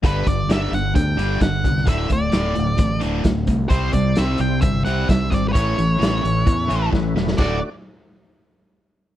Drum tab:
CC |----------------|----------------|----------------|----------------|
HH |x-x-x-x-x-x-x-x-|x-x-x-x-x-x-x-x-|x-x-x-x-x-x-x-x-|x-x-x-x-x-x-----|
SD |----o-------o--o|----o-------o---|----o-------o---|----o-------o-oo|
BD |o-o-----o---o-o-|o-o-----o---o-o-|o-o-----o---o-o-|o-------o---o---|

CC |x---------------|
HH |----------------|
SD |o---------------|
BD |o---------------|